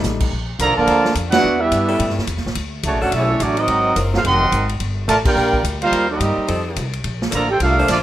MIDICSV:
0, 0, Header, 1, 8, 480
1, 0, Start_track
1, 0, Key_signature, -2, "major"
1, 0, Tempo, 280505
1, 537, Time_signature, 4, 2, 24, 8
1, 13739, End_track
2, 0, Start_track
2, 0, Title_t, "Trumpet section"
2, 0, Program_c, 0, 61
2, 1026, Note_on_c, 0, 65, 95
2, 1037, Note_on_c, 0, 74, 85
2, 1038, Note_on_c, 0, 69, 92
2, 1040, Note_on_c, 0, 82, 112
2, 1286, Note_off_c, 0, 65, 0
2, 1292, Note_off_c, 0, 74, 0
2, 1299, Note_off_c, 0, 69, 0
2, 1299, Note_off_c, 0, 82, 0
2, 1307, Note_on_c, 0, 65, 97
2, 1308, Note_on_c, 0, 81, 110
2, 1310, Note_on_c, 0, 70, 94
2, 1312, Note_on_c, 0, 74, 96
2, 1929, Note_off_c, 0, 65, 0
2, 1930, Note_off_c, 0, 70, 0
2, 1930, Note_off_c, 0, 81, 0
2, 1932, Note_off_c, 0, 74, 0
2, 2225, Note_on_c, 0, 71, 90
2, 2228, Note_on_c, 0, 78, 110
2, 2236, Note_on_c, 0, 64, 91
2, 2237, Note_on_c, 0, 74, 86
2, 2691, Note_off_c, 0, 71, 0
2, 2692, Note_off_c, 0, 78, 0
2, 2697, Note_off_c, 0, 64, 0
2, 2697, Note_off_c, 0, 74, 0
2, 2738, Note_on_c, 0, 76, 93
2, 2743, Note_on_c, 0, 62, 77
2, 2747, Note_on_c, 0, 67, 78
2, 2748, Note_on_c, 0, 71, 77
2, 3414, Note_off_c, 0, 62, 0
2, 3702, Note_off_c, 0, 76, 0
2, 3706, Note_off_c, 0, 67, 0
2, 3706, Note_off_c, 0, 71, 0
2, 4891, Note_on_c, 0, 73, 80
2, 4894, Note_on_c, 0, 66, 88
2, 4894, Note_on_c, 0, 74, 79
2, 4895, Note_on_c, 0, 81, 94
2, 5144, Note_off_c, 0, 73, 0
2, 5146, Note_off_c, 0, 66, 0
2, 5146, Note_off_c, 0, 74, 0
2, 5147, Note_off_c, 0, 81, 0
2, 5169, Note_on_c, 0, 69, 77
2, 5170, Note_on_c, 0, 62, 79
2, 5170, Note_on_c, 0, 78, 87
2, 5181, Note_on_c, 0, 73, 70
2, 5334, Note_off_c, 0, 62, 0
2, 5334, Note_off_c, 0, 69, 0
2, 5334, Note_off_c, 0, 78, 0
2, 5340, Note_off_c, 0, 73, 0
2, 5357, Note_on_c, 0, 76, 100
2, 5359, Note_on_c, 0, 69, 83
2, 5361, Note_on_c, 0, 73, 87
2, 5363, Note_on_c, 0, 62, 83
2, 5825, Note_off_c, 0, 76, 0
2, 5826, Note_off_c, 0, 69, 0
2, 5827, Note_off_c, 0, 73, 0
2, 5828, Note_off_c, 0, 62, 0
2, 5845, Note_on_c, 0, 74, 100
2, 5850, Note_on_c, 0, 61, 89
2, 5850, Note_on_c, 0, 66, 77
2, 5852, Note_on_c, 0, 57, 80
2, 6120, Note_off_c, 0, 74, 0
2, 6123, Note_off_c, 0, 61, 0
2, 6123, Note_off_c, 0, 66, 0
2, 6124, Note_off_c, 0, 57, 0
2, 6152, Note_on_c, 0, 70, 87
2, 6155, Note_on_c, 0, 66, 90
2, 6156, Note_on_c, 0, 75, 104
2, 6159, Note_on_c, 0, 60, 92
2, 6797, Note_off_c, 0, 70, 0
2, 6799, Note_off_c, 0, 66, 0
2, 6799, Note_off_c, 0, 75, 0
2, 6801, Note_off_c, 0, 60, 0
2, 7124, Note_on_c, 0, 63, 82
2, 7127, Note_on_c, 0, 77, 91
2, 7133, Note_on_c, 0, 72, 79
2, 7134, Note_on_c, 0, 70, 77
2, 7196, Note_off_c, 0, 63, 0
2, 7198, Note_off_c, 0, 77, 0
2, 7203, Note_off_c, 0, 72, 0
2, 7204, Note_off_c, 0, 70, 0
2, 7300, Note_on_c, 0, 70, 91
2, 7303, Note_on_c, 0, 84, 109
2, 7304, Note_on_c, 0, 75, 94
2, 7304, Note_on_c, 0, 78, 98
2, 7995, Note_off_c, 0, 70, 0
2, 7997, Note_off_c, 0, 75, 0
2, 7997, Note_off_c, 0, 78, 0
2, 7997, Note_off_c, 0, 84, 0
2, 8706, Note_on_c, 0, 74, 93
2, 8708, Note_on_c, 0, 65, 94
2, 8714, Note_on_c, 0, 81, 101
2, 8715, Note_on_c, 0, 70, 86
2, 8834, Note_off_c, 0, 74, 0
2, 8835, Note_off_c, 0, 65, 0
2, 8841, Note_off_c, 0, 81, 0
2, 8842, Note_off_c, 0, 70, 0
2, 9004, Note_on_c, 0, 79, 106
2, 9013, Note_on_c, 0, 70, 92
2, 9015, Note_on_c, 0, 74, 102
2, 9016, Note_on_c, 0, 65, 95
2, 9617, Note_off_c, 0, 79, 0
2, 9622, Note_off_c, 0, 70, 0
2, 9624, Note_off_c, 0, 65, 0
2, 9624, Note_off_c, 0, 74, 0
2, 9964, Note_on_c, 0, 63, 96
2, 9965, Note_on_c, 0, 72, 98
2, 9967, Note_on_c, 0, 77, 101
2, 9969, Note_on_c, 0, 70, 86
2, 10402, Note_off_c, 0, 63, 0
2, 10402, Note_off_c, 0, 72, 0
2, 10403, Note_off_c, 0, 77, 0
2, 10404, Note_off_c, 0, 70, 0
2, 10446, Note_on_c, 0, 67, 83
2, 10447, Note_on_c, 0, 75, 89
2, 10452, Note_on_c, 0, 60, 80
2, 11330, Note_off_c, 0, 67, 0
2, 11330, Note_off_c, 0, 75, 0
2, 11333, Note_off_c, 0, 60, 0
2, 12564, Note_on_c, 0, 69, 83
2, 12566, Note_on_c, 0, 65, 87
2, 12568, Note_on_c, 0, 82, 96
2, 12569, Note_on_c, 0, 74, 79
2, 12822, Note_off_c, 0, 69, 0
2, 12823, Note_off_c, 0, 65, 0
2, 12824, Note_off_c, 0, 74, 0
2, 12824, Note_off_c, 0, 82, 0
2, 12848, Note_on_c, 0, 69, 76
2, 12851, Note_on_c, 0, 63, 79
2, 12855, Note_on_c, 0, 72, 78
2, 12857, Note_on_c, 0, 79, 96
2, 13014, Note_off_c, 0, 69, 0
2, 13015, Note_off_c, 0, 63, 0
2, 13017, Note_off_c, 0, 72, 0
2, 13019, Note_off_c, 0, 79, 0
2, 13052, Note_on_c, 0, 70, 88
2, 13054, Note_on_c, 0, 62, 92
2, 13054, Note_on_c, 0, 77, 101
2, 13055, Note_on_c, 0, 69, 95
2, 13482, Note_off_c, 0, 70, 0
2, 13483, Note_off_c, 0, 62, 0
2, 13483, Note_off_c, 0, 69, 0
2, 13483, Note_off_c, 0, 77, 0
2, 13531, Note_on_c, 0, 74, 96
2, 13532, Note_on_c, 0, 58, 83
2, 13534, Note_on_c, 0, 69, 81
2, 13542, Note_on_c, 0, 65, 81
2, 13654, Note_off_c, 0, 74, 0
2, 13655, Note_off_c, 0, 58, 0
2, 13656, Note_off_c, 0, 69, 0
2, 13663, Note_off_c, 0, 65, 0
2, 13739, End_track
3, 0, Start_track
3, 0, Title_t, "Saxophone section"
3, 0, Program_c, 1, 65
3, 1491, Note_on_c, 1, 58, 77
3, 1492, Note_on_c, 1, 69, 90
3, 1495, Note_on_c, 1, 62, 80
3, 1498, Note_on_c, 1, 53, 91
3, 2206, Note_off_c, 1, 58, 0
3, 2206, Note_off_c, 1, 69, 0
3, 2208, Note_off_c, 1, 62, 0
3, 2210, Note_off_c, 1, 53, 0
3, 3227, Note_on_c, 1, 61, 104
3, 3229, Note_on_c, 1, 69, 116
3, 3230, Note_on_c, 1, 64, 101
3, 3236, Note_on_c, 1, 55, 115
3, 3857, Note_off_c, 1, 61, 0
3, 3859, Note_off_c, 1, 64, 0
3, 3859, Note_off_c, 1, 69, 0
3, 3862, Note_off_c, 1, 55, 0
3, 5162, Note_on_c, 1, 62, 108
3, 5166, Note_on_c, 1, 61, 106
3, 5166, Note_on_c, 1, 69, 125
3, 5167, Note_on_c, 1, 54, 119
3, 5785, Note_off_c, 1, 62, 0
3, 5786, Note_off_c, 1, 61, 0
3, 5787, Note_off_c, 1, 54, 0
3, 5787, Note_off_c, 1, 69, 0
3, 6789, Note_on_c, 1, 60, 90
3, 6789, Note_on_c, 1, 70, 102
3, 6794, Note_on_c, 1, 54, 100
3, 6804, Note_on_c, 1, 65, 88
3, 7494, Note_off_c, 1, 60, 0
3, 7494, Note_off_c, 1, 70, 0
3, 7497, Note_off_c, 1, 54, 0
3, 7502, Note_off_c, 1, 65, 0
3, 9173, Note_on_c, 1, 65, 89
3, 9175, Note_on_c, 1, 62, 87
3, 9178, Note_on_c, 1, 70, 113
3, 9180, Note_on_c, 1, 55, 94
3, 9886, Note_off_c, 1, 65, 0
3, 9887, Note_off_c, 1, 62, 0
3, 9889, Note_off_c, 1, 70, 0
3, 9890, Note_off_c, 1, 55, 0
3, 11076, Note_on_c, 1, 60, 93
3, 11085, Note_on_c, 1, 53, 103
3, 11089, Note_on_c, 1, 69, 107
3, 11091, Note_on_c, 1, 63, 96
3, 11799, Note_off_c, 1, 60, 0
3, 11803, Note_off_c, 1, 53, 0
3, 11805, Note_off_c, 1, 69, 0
3, 11806, Note_off_c, 1, 63, 0
3, 12501, Note_on_c, 1, 58, 89
3, 12509, Note_on_c, 1, 62, 89
3, 12514, Note_on_c, 1, 53, 96
3, 12514, Note_on_c, 1, 69, 96
3, 12710, Note_off_c, 1, 58, 0
3, 12715, Note_off_c, 1, 62, 0
3, 12718, Note_off_c, 1, 53, 0
3, 12719, Note_off_c, 1, 69, 0
3, 13307, Note_on_c, 1, 62, 111
3, 13313, Note_on_c, 1, 53, 114
3, 13318, Note_on_c, 1, 58, 109
3, 13318, Note_on_c, 1, 72, 125
3, 13739, Note_off_c, 1, 53, 0
3, 13739, Note_off_c, 1, 58, 0
3, 13739, Note_off_c, 1, 62, 0
3, 13739, Note_off_c, 1, 72, 0
3, 13739, End_track
4, 0, Start_track
4, 0, Title_t, "Trombone section"
4, 0, Program_c, 2, 61
4, 1021, Note_on_c, 2, 58, 93
4, 1022, Note_on_c, 2, 53, 84
4, 1025, Note_on_c, 2, 50, 86
4, 1290, Note_off_c, 2, 53, 0
4, 1290, Note_off_c, 2, 58, 0
4, 1292, Note_off_c, 2, 50, 0
4, 1315, Note_on_c, 2, 50, 97
4, 1323, Note_on_c, 2, 58, 92
4, 1325, Note_on_c, 2, 53, 92
4, 1933, Note_off_c, 2, 50, 0
4, 1938, Note_off_c, 2, 58, 0
4, 1939, Note_off_c, 2, 53, 0
4, 2248, Note_on_c, 2, 62, 89
4, 2248, Note_on_c, 2, 66, 90
4, 2249, Note_on_c, 2, 59, 85
4, 2703, Note_off_c, 2, 59, 0
4, 2703, Note_off_c, 2, 62, 0
4, 2703, Note_off_c, 2, 66, 0
4, 2736, Note_on_c, 2, 64, 73
4, 2738, Note_on_c, 2, 59, 73
4, 2741, Note_on_c, 2, 55, 72
4, 3701, Note_off_c, 2, 64, 0
4, 3702, Note_off_c, 2, 59, 0
4, 3703, Note_off_c, 2, 55, 0
4, 4866, Note_on_c, 2, 57, 83
4, 4870, Note_on_c, 2, 54, 73
4, 4877, Note_on_c, 2, 49, 82
4, 5131, Note_off_c, 2, 57, 0
4, 5133, Note_off_c, 2, 54, 0
4, 5137, Note_off_c, 2, 49, 0
4, 5160, Note_on_c, 2, 61, 75
4, 5167, Note_on_c, 2, 57, 73
4, 5168, Note_on_c, 2, 66, 76
4, 5329, Note_off_c, 2, 61, 0
4, 5333, Note_off_c, 2, 57, 0
4, 5333, Note_off_c, 2, 66, 0
4, 5361, Note_on_c, 2, 61, 76
4, 5368, Note_on_c, 2, 57, 76
4, 5370, Note_on_c, 2, 64, 74
4, 5822, Note_off_c, 2, 57, 0
4, 5827, Note_off_c, 2, 61, 0
4, 5832, Note_off_c, 2, 64, 0
4, 5842, Note_on_c, 2, 57, 72
4, 5846, Note_on_c, 2, 62, 77
4, 5847, Note_on_c, 2, 54, 78
4, 6106, Note_off_c, 2, 54, 0
4, 6119, Note_off_c, 2, 57, 0
4, 6119, Note_on_c, 2, 60, 82
4, 6121, Note_off_c, 2, 62, 0
4, 6121, Note_on_c, 2, 63, 84
4, 6127, Note_on_c, 2, 54, 92
4, 6781, Note_off_c, 2, 60, 0
4, 6782, Note_off_c, 2, 63, 0
4, 6785, Note_off_c, 2, 54, 0
4, 7082, Note_on_c, 2, 65, 75
4, 7083, Note_on_c, 2, 54, 86
4, 7090, Note_on_c, 2, 60, 77
4, 7163, Note_off_c, 2, 65, 0
4, 7164, Note_off_c, 2, 54, 0
4, 7169, Note_off_c, 2, 60, 0
4, 7271, Note_on_c, 2, 54, 85
4, 7273, Note_on_c, 2, 51, 79
4, 7275, Note_on_c, 2, 60, 80
4, 7980, Note_off_c, 2, 54, 0
4, 7981, Note_off_c, 2, 51, 0
4, 7982, Note_off_c, 2, 60, 0
4, 8698, Note_on_c, 2, 57, 94
4, 8828, Note_off_c, 2, 57, 0
4, 8987, Note_on_c, 2, 67, 86
4, 8988, Note_on_c, 2, 62, 89
4, 8992, Note_on_c, 2, 58, 96
4, 9609, Note_off_c, 2, 62, 0
4, 9609, Note_off_c, 2, 67, 0
4, 9611, Note_off_c, 2, 58, 0
4, 9955, Note_on_c, 2, 58, 89
4, 9956, Note_on_c, 2, 55, 89
4, 9960, Note_on_c, 2, 65, 86
4, 10397, Note_off_c, 2, 58, 0
4, 10398, Note_off_c, 2, 55, 0
4, 10399, Note_off_c, 2, 65, 0
4, 10422, Note_on_c, 2, 58, 68
4, 10424, Note_on_c, 2, 63, 64
4, 10433, Note_on_c, 2, 55, 69
4, 11046, Note_off_c, 2, 58, 0
4, 11318, Note_off_c, 2, 63, 0
4, 11323, Note_off_c, 2, 55, 0
4, 12547, Note_on_c, 2, 53, 84
4, 12553, Note_on_c, 2, 50, 83
4, 12553, Note_on_c, 2, 58, 82
4, 12812, Note_off_c, 2, 53, 0
4, 12816, Note_off_c, 2, 50, 0
4, 12816, Note_off_c, 2, 58, 0
4, 12833, Note_on_c, 2, 67, 72
4, 13006, Note_off_c, 2, 67, 0
4, 13036, Note_on_c, 2, 62, 76
4, 13036, Note_on_c, 2, 65, 75
4, 13037, Note_on_c, 2, 57, 83
4, 13473, Note_off_c, 2, 62, 0
4, 13473, Note_off_c, 2, 65, 0
4, 13474, Note_off_c, 2, 57, 0
4, 13503, Note_on_c, 2, 53, 76
4, 13505, Note_on_c, 2, 57, 76
4, 13509, Note_on_c, 2, 62, 75
4, 13633, Note_off_c, 2, 53, 0
4, 13634, Note_off_c, 2, 57, 0
4, 13637, Note_off_c, 2, 62, 0
4, 13739, End_track
5, 0, Start_track
5, 0, Title_t, "Grand piano"
5, 0, Program_c, 3, 0
5, 0, Note_on_c, 3, 55, 55
5, 0, Note_on_c, 3, 57, 50
5, 0, Note_on_c, 3, 63, 60
5, 485, Note_off_c, 3, 55, 0
5, 490, Note_off_c, 3, 57, 0
5, 497, Note_off_c, 3, 63, 0
5, 13739, End_track
6, 0, Start_track
6, 0, Title_t, "Upright bass"
6, 0, Program_c, 4, 32
6, 52, Note_on_c, 4, 33, 97
6, 520, Note_off_c, 4, 33, 0
6, 533, Note_on_c, 4, 34, 86
6, 1001, Note_off_c, 4, 34, 0
6, 1011, Note_on_c, 4, 36, 94
6, 1174, Note_off_c, 4, 36, 0
6, 1174, Note_on_c, 4, 34, 64
6, 1326, Note_off_c, 4, 34, 0
6, 1336, Note_on_c, 4, 33, 74
6, 1472, Note_off_c, 4, 33, 0
6, 1483, Note_on_c, 4, 38, 90
6, 1955, Note_off_c, 4, 38, 0
6, 1970, Note_on_c, 4, 41, 92
6, 2438, Note_off_c, 4, 41, 0
6, 2463, Note_on_c, 4, 40, 83
6, 2920, Note_off_c, 4, 40, 0
6, 2930, Note_on_c, 4, 43, 97
6, 3398, Note_off_c, 4, 43, 0
6, 3417, Note_on_c, 4, 45, 90
6, 3571, Note_off_c, 4, 45, 0
6, 3571, Note_on_c, 4, 43, 59
6, 3724, Note_off_c, 4, 43, 0
6, 3734, Note_on_c, 4, 40, 70
6, 3875, Note_off_c, 4, 40, 0
6, 3885, Note_on_c, 4, 40, 98
6, 4056, Note_on_c, 4, 37, 63
6, 4081, Note_off_c, 4, 40, 0
6, 4196, Note_off_c, 4, 37, 0
6, 4206, Note_on_c, 4, 33, 73
6, 4359, Note_off_c, 4, 33, 0
6, 4371, Note_on_c, 4, 38, 91
6, 4838, Note_off_c, 4, 38, 0
6, 4851, Note_on_c, 4, 37, 96
6, 5014, Note_off_c, 4, 37, 0
6, 5014, Note_on_c, 4, 33, 72
6, 5165, Note_off_c, 4, 33, 0
6, 5176, Note_on_c, 4, 30, 74
6, 5320, Note_off_c, 4, 30, 0
6, 5330, Note_on_c, 4, 35, 94
6, 5798, Note_off_c, 4, 35, 0
6, 5813, Note_on_c, 4, 33, 106
6, 6279, Note_off_c, 4, 33, 0
6, 6290, Note_on_c, 4, 32, 88
6, 6757, Note_off_c, 4, 32, 0
6, 6774, Note_on_c, 4, 30, 90
6, 7240, Note_off_c, 4, 30, 0
6, 7253, Note_on_c, 4, 29, 97
6, 7719, Note_off_c, 4, 29, 0
6, 7730, Note_on_c, 4, 32, 98
6, 8198, Note_off_c, 4, 32, 0
6, 8210, Note_on_c, 4, 31, 85
6, 8678, Note_off_c, 4, 31, 0
6, 8688, Note_on_c, 4, 33, 102
6, 9150, Note_off_c, 4, 33, 0
6, 9161, Note_on_c, 4, 34, 85
6, 9633, Note_off_c, 4, 34, 0
6, 9640, Note_on_c, 4, 38, 97
6, 10113, Note_off_c, 4, 38, 0
6, 10121, Note_on_c, 4, 39, 92
6, 10593, Note_off_c, 4, 39, 0
6, 10610, Note_on_c, 4, 43, 106
6, 10883, Note_off_c, 4, 43, 0
6, 11095, Note_on_c, 4, 41, 94
6, 11560, Note_off_c, 4, 41, 0
6, 11575, Note_on_c, 4, 36, 100
6, 12041, Note_off_c, 4, 36, 0
6, 12050, Note_on_c, 4, 34, 93
6, 12518, Note_off_c, 4, 34, 0
6, 12528, Note_on_c, 4, 33, 106
6, 12997, Note_off_c, 4, 33, 0
6, 13009, Note_on_c, 4, 36, 97
6, 13478, Note_off_c, 4, 36, 0
6, 13488, Note_on_c, 4, 34, 96
6, 13739, Note_off_c, 4, 34, 0
6, 13739, End_track
7, 0, Start_track
7, 0, Title_t, "Muted upright bass strokes"
7, 10907, Note_on_c, 9, 29, 41
7, 11078, Note_off_c, 9, 29, 0
7, 13739, End_track
8, 0, Start_track
8, 0, Title_t, "Drums"
8, 56, Note_on_c, 9, 44, 67
8, 65, Note_on_c, 9, 38, 59
8, 228, Note_off_c, 9, 44, 0
8, 236, Note_off_c, 9, 38, 0
8, 349, Note_on_c, 9, 49, 96
8, 354, Note_on_c, 9, 36, 83
8, 520, Note_off_c, 9, 49, 0
8, 526, Note_off_c, 9, 36, 0
8, 1016, Note_on_c, 9, 44, 62
8, 1016, Note_on_c, 9, 51, 87
8, 1187, Note_off_c, 9, 44, 0
8, 1187, Note_off_c, 9, 51, 0
8, 1496, Note_on_c, 9, 51, 78
8, 1668, Note_off_c, 9, 51, 0
8, 1797, Note_on_c, 9, 38, 65
8, 1968, Note_off_c, 9, 38, 0
8, 1974, Note_on_c, 9, 44, 60
8, 1974, Note_on_c, 9, 51, 82
8, 2145, Note_off_c, 9, 44, 0
8, 2145, Note_off_c, 9, 51, 0
8, 2260, Note_on_c, 9, 51, 74
8, 2269, Note_on_c, 9, 38, 106
8, 2431, Note_off_c, 9, 51, 0
8, 2440, Note_off_c, 9, 38, 0
8, 2936, Note_on_c, 9, 44, 72
8, 2936, Note_on_c, 9, 51, 89
8, 3107, Note_off_c, 9, 44, 0
8, 3107, Note_off_c, 9, 51, 0
8, 3415, Note_on_c, 9, 51, 84
8, 3586, Note_off_c, 9, 51, 0
8, 3587, Note_on_c, 9, 38, 30
8, 3739, Note_off_c, 9, 38, 0
8, 3739, Note_on_c, 9, 38, 56
8, 3889, Note_on_c, 9, 44, 56
8, 3889, Note_on_c, 9, 51, 75
8, 3911, Note_off_c, 9, 38, 0
8, 4058, Note_on_c, 9, 38, 33
8, 4060, Note_off_c, 9, 44, 0
8, 4060, Note_off_c, 9, 51, 0
8, 4218, Note_off_c, 9, 38, 0
8, 4218, Note_on_c, 9, 38, 55
8, 4367, Note_on_c, 9, 51, 84
8, 4390, Note_off_c, 9, 38, 0
8, 4539, Note_off_c, 9, 51, 0
8, 4848, Note_on_c, 9, 44, 64
8, 4848, Note_on_c, 9, 51, 82
8, 5019, Note_off_c, 9, 44, 0
8, 5019, Note_off_c, 9, 51, 0
8, 5338, Note_on_c, 9, 51, 79
8, 5509, Note_off_c, 9, 51, 0
8, 5819, Note_on_c, 9, 44, 72
8, 5819, Note_on_c, 9, 51, 79
8, 5990, Note_off_c, 9, 44, 0
8, 5990, Note_off_c, 9, 51, 0
8, 6106, Note_on_c, 9, 51, 57
8, 6277, Note_off_c, 9, 51, 0
8, 6293, Note_on_c, 9, 51, 80
8, 6464, Note_off_c, 9, 51, 0
8, 6777, Note_on_c, 9, 44, 57
8, 6777, Note_on_c, 9, 51, 84
8, 6948, Note_off_c, 9, 44, 0
8, 6948, Note_off_c, 9, 51, 0
8, 7086, Note_on_c, 9, 38, 51
8, 7257, Note_off_c, 9, 38, 0
8, 7265, Note_on_c, 9, 51, 73
8, 7436, Note_off_c, 9, 51, 0
8, 7738, Note_on_c, 9, 44, 55
8, 7738, Note_on_c, 9, 51, 74
8, 7909, Note_off_c, 9, 44, 0
8, 7909, Note_off_c, 9, 51, 0
8, 8032, Note_on_c, 9, 51, 59
8, 8203, Note_off_c, 9, 51, 0
8, 8213, Note_on_c, 9, 51, 70
8, 8384, Note_off_c, 9, 51, 0
8, 8703, Note_on_c, 9, 44, 61
8, 8703, Note_on_c, 9, 51, 92
8, 8874, Note_off_c, 9, 44, 0
8, 8874, Note_off_c, 9, 51, 0
8, 8989, Note_on_c, 9, 49, 88
8, 8991, Note_on_c, 9, 36, 102
8, 9160, Note_off_c, 9, 49, 0
8, 9162, Note_off_c, 9, 36, 0
8, 9471, Note_on_c, 9, 36, 67
8, 9642, Note_off_c, 9, 36, 0
8, 9659, Note_on_c, 9, 44, 52
8, 9659, Note_on_c, 9, 51, 78
8, 9830, Note_off_c, 9, 44, 0
8, 9830, Note_off_c, 9, 51, 0
8, 9953, Note_on_c, 9, 51, 55
8, 10124, Note_off_c, 9, 51, 0
8, 10139, Note_on_c, 9, 51, 77
8, 10310, Note_off_c, 9, 51, 0
8, 10617, Note_on_c, 9, 44, 64
8, 10617, Note_on_c, 9, 51, 83
8, 10788, Note_off_c, 9, 44, 0
8, 10788, Note_off_c, 9, 51, 0
8, 11095, Note_on_c, 9, 51, 76
8, 11266, Note_off_c, 9, 51, 0
8, 11574, Note_on_c, 9, 44, 66
8, 11574, Note_on_c, 9, 51, 86
8, 11745, Note_off_c, 9, 44, 0
8, 11745, Note_off_c, 9, 51, 0
8, 11865, Note_on_c, 9, 51, 57
8, 12036, Note_off_c, 9, 51, 0
8, 12047, Note_on_c, 9, 51, 73
8, 12218, Note_off_c, 9, 51, 0
8, 12353, Note_on_c, 9, 38, 66
8, 12524, Note_off_c, 9, 38, 0
8, 12524, Note_on_c, 9, 44, 77
8, 12524, Note_on_c, 9, 51, 90
8, 12695, Note_off_c, 9, 44, 0
8, 12695, Note_off_c, 9, 51, 0
8, 13007, Note_on_c, 9, 51, 76
8, 13178, Note_off_c, 9, 51, 0
8, 13488, Note_on_c, 9, 44, 72
8, 13488, Note_on_c, 9, 51, 84
8, 13497, Note_on_c, 9, 38, 42
8, 13659, Note_off_c, 9, 44, 0
8, 13659, Note_off_c, 9, 51, 0
8, 13668, Note_off_c, 9, 38, 0
8, 13739, End_track
0, 0, End_of_file